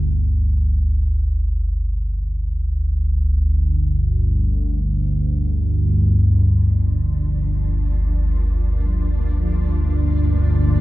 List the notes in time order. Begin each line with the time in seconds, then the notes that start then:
Already playing: G1 D2
4.82 G1 D2 G2
5.10 F3
5.75 D4
6.83 A#3